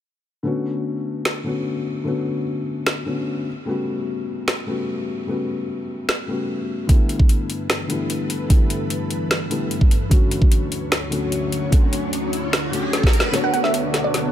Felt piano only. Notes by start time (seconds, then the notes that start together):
0.43 D3 A3 B3 C#4 F#4
1.43 D3 A3 B3 C#4 F#4
2.04 D3 A3 B3 C#4 F#4
3.06 D3 A3 B3 C#4 F#4
3.65 C#3 G3 A3 B3
3.69 F#4
4.66 C#3 G3 A3 B3
4.70 F#4
5.26 C#3 G3 A3 B3
5.30 F#4
6.27 C#3 G3 A3 B3 F#4
6.87 D3 G3 A3 B3 E4
7.88 D3 G3 A3 B3
7.92 E4
8.48 D3 G3 A3 B3
8.52 E4
9.50 D3 G3 A3 B3 E4
10.09 D3 F#3 A3 C#4
10.13 F#4
11.10 D3 F#3 A3 C#4
11.14 F#4
11.70 D3 F#3 A3 C#4 F#4
12.71 D3 F#3 A3 C#4
12.75 F#4
13.32 D3 A3 B3 F#4 C#5